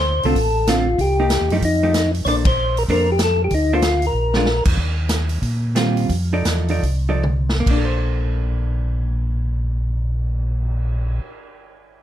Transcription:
0.00 0.20 D2 medium
0.00 0.26 C5 loud
0.23 0.35 C2 medium
0.23 0.35 D3 medium
0.23 0.35 A3 medium
0.23 0.36 C4 medium
0.23 0.36 F4 medium
0.23 0.69 A4 medium
0.23 open hi-hat soft
0.35 0.95 A1 medium
0.35 kick soft
0.35 open hi-hat soft
0.67 0.86 D3 medium
0.67 0.86 A3 medium
0.67 0.86 C4 medium
0.67 1.01 F4 medium
0.67 0.87 F4 medium
0.67 snare medium
0.67 closed hi-hat soft
0.98 1.38 C2 medium
0.98 1.53 G4 medium
0.98 kick soft
0.98 open hi-hat soft
1.20 1.49 A#3 medium
1.20 1.49 D#4 medium
1.20 1.50 G4 medium
1.30 snare medium
1.30 closed hi-hat medium
1.41 1.51 D#2 medium
1.50 1.61 F#2 medium
1.50 1.62 F3 medium
1.50 1.62 A3 medium
1.50 1.57 D#4 medium
1.50 1.62 D#4 medium
1.50 1.62 G4 medium
1.50 open hi-hat soft
1.61 2.22 F2 medium
1.61 2.11 D#4 medium
1.61 kick soft
1.61 open hi-hat soft
1.83 1.93 F3 medium
1.83 1.93 A3 medium
1.83 1.93 D#4 medium
1.83 1.94 G4 medium
1.94 snare medium
1.94 closed hi-hat medium
2.14 open hi-hat soft
2.25 2.85 A#1 medium
2.25 2.44 A#3 medium
2.25 2.44 D4 medium
2.25 2.45 A4 medium
2.25 2.45 C5 medium
2.25 2.27 C#5 medium
2.25 2.36 D5 loud
2.25 kick soft
2.25 open hi-hat soft
2.45 2.78 C5 medium
2.45 kick medium
2.45 ride medium
2.77 2.83 A#4 medium
2.77 open hi-hat soft
2.88 3.48 F2 medium
2.88 3.07 A#3 medium
2.88 3.07 D4 medium
2.88 3.07 A4 medium
2.88 3.10 A#4 medium
2.88 3.07 C5 medium
2.88 kick soft
2.88 open hi-hat soft
3.12 3.21 G4 medium
3.19 snare medium
3.19 closed hi-hat medium
3.24 3.42 A4 medium
3.44 3.54 G4 medium
3.51 4.11 D2 medium
3.51 3.73 D#4 medium
3.51 kick soft
3.51 open hi-hat soft
3.73 3.83 A#3 medium
3.73 3.83 D4 medium
3.73 4.06 F4 medium
3.73 3.83 A4 medium
3.73 3.83 C5 medium
3.82 snare medium
3.82 closed hi-hat soft
4.02 open hi-hat soft
4.07 4.64 A#4 medium
4.13 4.62 A#1 medium
4.34 4.46 G#3 medium
4.34 4.46 D4 medium
4.34 4.46 F4 medium
4.34 snare medium
4.46 snare medium
4.65 4.77 E2 medium
4.65 kick medium
4.65 crash medium
4.77 5.38 D#2 medium
4.77 kick soft
5.09 snare medium
5.09 closed hi-hat medium
5.29 open hi-hat soft
5.42 6.06 A#2 medium
5.42 kick soft
5.42 open hi-hat soft
5.75 6.10 D#3 medium
5.75 6.10 G3 medium
5.75 6.10 C4 medium
5.75 6.10 F4 medium
5.75 snare medium
5.75 closed hi-hat soft
5.97 open hi-hat soft
6.09 6.43 F2 medium
6.09 kick soft
6.09 open hi-hat soft
6.33 6.67 F3 soft
6.33 6.67 D#4 medium
6.33 6.67 A4 medium
6.33 6.67 D5 medium
6.45 6.80 E2 medium
6.45 snare medium
6.45 closed hi-hat medium
6.68 6.82 F3 medium
6.68 6.82 D#4 medium
6.68 6.82 A4 medium
6.68 6.83 D5 medium
6.68 open hi-hat soft
6.83 7.63 C2 medium
6.83 kick soft
6.83 open hi-hat soft
7.09 7.22 F3 medium
7.09 7.22 D#4 medium
7.09 7.23 A4 medium
7.09 7.23 D5 medium
7.23 mid tom soft
7.49 snare medium
7.60 11.18 A#3 soft
7.66 11.20 A#1 medium
7.66 kick soft
7.66 crash medium
7.70 11.29 D4 medium
7.78 11.36 A4 medium
7.85 11.43 C5 medium
7.94 cymbal swell soft

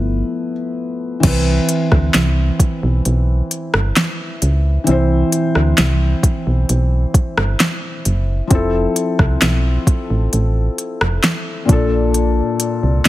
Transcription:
0.00 0.23 G1 loud
0.00 1.19 F3 medium
0.00 1.20 A3 medium
0.00 1.20 B3 medium
0.00 1.20 E4 medium
0.00 0.51 B4 medium
1.20 1.60 C2 loud
1.20 4.81 E3 medium
1.20 4.83 C4 medium
1.20 kick loud
1.20 closed hi-hat medium
1.20 crash medium
1.25 4.84 E4 medium
1.25 4.85 B4 medium
1.69 closed hi-hat medium
1.92 2.10 D2 medium
1.92 kick medium
1.92 cross-stick medium
2.14 2.51 C2 loud
2.14 snare loud
2.14 closed hi-hat medium
2.60 kick medium
2.60 closed hi-hat medium
2.83 3.01 B1 loud
3.05 3.42 B1 loud
3.05 closed hi-hat medium
3.51 closed hi-hat medium
3.74 3.92 G1 medium
3.74 cross-stick loud
3.96 snare loud
3.96 closed hi-hat medium
4.42 4.78 C#2 medium
4.42 closed hi-hat medium
4.84 8.45 E3 medium
4.84 8.46 C4 medium
4.84 closed hi-hat medium
4.88 5.24 C2 loud
4.88 8.48 E4 medium
4.88 8.49 C5 medium
5.32 closed hi-hat medium
5.55 5.74 D2 medium
5.55 cross-stick medium
5.78 6.15 C2 loud
5.78 snare loud
5.78 closed hi-hat medium
6.23 kick medium
6.23 closed hi-hat medium
6.47 6.65 B1 medium
6.69 7.06 B1 loud
6.69 closed hi-hat medium
7.14 kick loud
7.14 closed hi-hat medium
7.38 7.56 G1 medium
7.38 cross-stick loud
7.60 snare loud
7.60 closed hi-hat medium
8.05 8.42 F#1 medium
8.05 closed hi-hat medium
8.47 8.87 F1 loud
8.47 11.63 F3 medium
8.47 11.65 C4 medium
8.47 kick loud
8.47 closed hi-hat medium
8.52 11.66 E4 medium
8.52 11.67 A4 medium
8.96 closed hi-hat medium
9.19 9.37 C2 medium
9.19 kick medium
9.19 cross-stick medium
9.42 9.78 B1 medium
9.42 snare loud
9.42 closed hi-hat medium
9.87 kick medium
9.87 closed hi-hat medium
10.10 10.28 A1 medium
10.33 10.69 A1 loud
10.33 closed hi-hat medium
10.78 closed hi-hat medium
11.01 11.19 F1 medium
11.01 cross-stick loud
11.24 snare loud
11.24 closed hi-hat medium
11.65 12.41 A#1 loud
11.65 13.08 A#2 medium
11.65 13.08 A#3 medium
11.65 kick loud
11.65 closed hi-hat medium
11.70 13.08 D4 medium
11.70 13.08 A4 medium
12.14 closed hi-hat medium
12.60 closed hi-hat medium
12.83 13.01 C2 medium

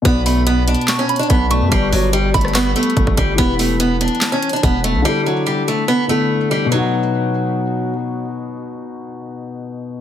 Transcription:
0.02 0.75 B1 loud
0.02 1.46 B2 medium
0.02 1.47 B3 medium
0.02 0.21 B3 loud
0.02 kick loud
0.02 closed hi-hat medium
0.06 1.49 F#4 medium
0.06 1.50 D5 medium
0.26 0.42 A3 medium
0.26 0.85 B5 medium
0.26 open hi-hat medium
0.47 0.62 B3 loud
0.47 closed hi-hat medium
0.68 0.97 D4 medium
0.68 closed hi-hat medium
0.74 closed hi-hat medium
0.81 closed hi-hat soft
0.88 1.08 C#6 medium
0.88 snare loud
0.88 clap loud
0.88 closed hi-hat medium
0.99 1.15 C#4 medium
1.09 1.49 B5 medium
1.09 closed hi-hat medium
1.16 1.27 D4 medium
1.16 closed hi-hat medium
1.23 closed hi-hat soft
1.30 1.63 B1 loud
1.30 1.46 B3 medium
1.30 kick loud
1.30 closed hi-hat medium
1.49 1.71 B2 medium
1.49 1.66 A3 medium
1.49 1.72 B3 soft
1.49 1.72 F#4 soft
1.49 1.73 D5 medium
1.49 1.71 C#6 medium
1.49 closed hi-hat medium
1.61 1.71 F#2 loud
1.69 1.92 G1 loud
1.69 3.34 G3 medium
1.69 1.87 G3 loud
1.69 3.35 G4 medium
1.69 kick loud
1.69 closed hi-hat medium
1.73 3.36 B4 medium
1.73 3.37 D5 medium
1.93 2.33 G1 loud
1.93 2.08 F#3 medium
1.93 open hi-hat medium
2.13 2.29 G3 medium
2.13 closed hi-hat loud
2.34 2.74 G1 loud
2.34 2.50 A3 medium
2.34 2.54 B5 medium
2.34 kick loud
2.34 closed hi-hat medium
2.41 cross-stick loud
2.41 closed hi-hat medium
2.48 closed hi-hat soft
2.55 2.71 B3 loud
2.55 2.94 C#6 medium
2.55 snare loud
2.55 clap loud
2.55 closed hi-hat medium
2.76 3.15 A3 medium
2.76 closed hi-hat medium
2.83 closed hi-hat medium
2.90 closed hi-hat soft
2.97 3.06 G1 loud
2.97 kick loud
2.97 closed hi-hat medium
3.07 3.17 G1 loud
3.07 kick medium
3.17 3.38 G1 loud
3.17 3.33 G3 medium
3.17 kick medium
3.17 closed hi-hat medium
3.35 4.08 E1 loud
3.35 5.00 E3 medium
3.35 3.54 B3 loud
3.35 5.01 E4 medium
3.35 kick loud
3.35 closed hi-hat medium
3.40 5.02 G4 medium
3.40 5.03 B4 medium
3.59 3.75 A3 medium
3.59 open hi-hat medium
3.80 3.96 B3 medium
3.80 closed hi-hat loud
4.01 4.30 D4 medium
4.01 closed hi-hat medium
4.08 closed hi-hat medium
4.15 closed hi-hat soft
4.21 snare loud
4.21 clap loud
4.21 closed hi-hat medium
4.32 4.48 C#4 medium
4.43 closed hi-hat medium
4.49 4.61 D4 medium
4.49 closed hi-hat medium
4.56 closed hi-hat soft
4.63 4.96 E1 loud
4.63 4.79 B3 medium
4.63 kick loud
4.63 closed hi-hat medium
4.84 5.00 A3 medium
4.84 closed hi-hat medium
4.95 5.05 B1 loud
5.02 6.06 D3 medium
5.02 5.21 G3 loud
5.02 6.07 D4 medium
5.06 6.08 E4 medium
5.06 6.09 A4 medium
5.26 5.42 F#3 medium
5.46 5.62 G3 medium
5.68 5.84 A3 medium
5.88 6.04 B3 medium
6.08 6.71 D3 medium
6.08 6.48 A3 medium
6.08 6.71 D4 soft
6.08 6.72 E4 soft
6.08 6.73 A4 medium
6.51 6.67 G3 medium
6.65 10.01 B2 medium
6.70 7.93 F#3 medium
6.70 10.01 B3 medium
6.74 10.01 D#4 medium
6.78 10.01 F#4 medium

